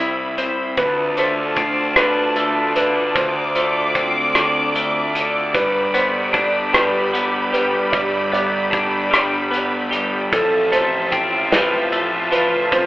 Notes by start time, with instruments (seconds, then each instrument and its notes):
Already playing: picked electric bass C2, clean electric guitar C3 C4 G4, string section C4 E4 B5
0.00 clean electric guitar E4
0.38 clean electric guitar C4, closed hi-hat
0.76 picked electric bass D2, clean electric guitar D2, string section F4 D5 A5, felt piano B4, kick, closed hi-hat
1.17 clean electric guitar A3, felt piano C5, closed hi-hat
1.56 clean electric guitar C4, kick, closed hi-hat
1.96 clean electric guitar D3, felt piano B4, cross-stick, closed hi-hat
2.36 clean electric guitar A3, closed hi-hat
2.76 clean electric guitar D3, felt piano B4, closed hi-hat
3.15 clean electric guitar D2, picked electric bass D2, felt piano C5, string section D6, kick, closed hi-hat
3.55 clean electric guitar A3, felt piano C5, closed hi-hat
3.95 clean electric guitar C4, kick, closed hi-hat
4.35 clean electric guitar D3, cross-stick, closed hi-hat
4.76 clean electric guitar A3, closed hi-hat
5.15 clean electric guitar D3, closed hi-hat
5.54 picked electric bass G1, clean electric guitar G2, string section G4 B5, felt piano B4, kick, closed hi-hat
5.94 clean electric guitar B3, felt piano C5, closed hi-hat
6.33 clean electric guitar D4, kick, closed hi-hat
6.73 clean electric guitar G3, felt piano B4, cross-stick, closed hi-hat
7.13 clean electric guitar B3, closed hi-hat
7.53 clean electric guitar G3, felt piano B4, closed hi-hat
7.92 picked electric bass G1, clean electric guitar G2, felt piano D5, kick, closed hi-hat
8.32 clean electric guitar B3, felt piano D5, closed hi-hat
8.71 clean electric guitar D4, kick, closed hi-hat
9.11 clean electric guitar G3, cross-stick, closed hi-hat
9.51 clean electric guitar B3, closed hi-hat
9.91 clean electric guitar G3, closed hi-hat
10.32 picked electric bass A1, clean electric guitar F2, string section F4 E5 A5, felt piano A4, kick, closed hi-hat
10.72 clean electric guitar A3, felt piano C5, closed hi-hat
11.12 clean electric guitar C4, kick, closed hi-hat
11.52 clean electric guitar F3, felt piano B4, snare, closed hi-hat
11.92 clean electric guitar A3, closed hi-hat
12.32 clean electric guitar F3, felt piano B4, closed hi-hat
12.71 picked electric bass A1, clean electric guitar F2, felt piano C5, kick, closed hi-hat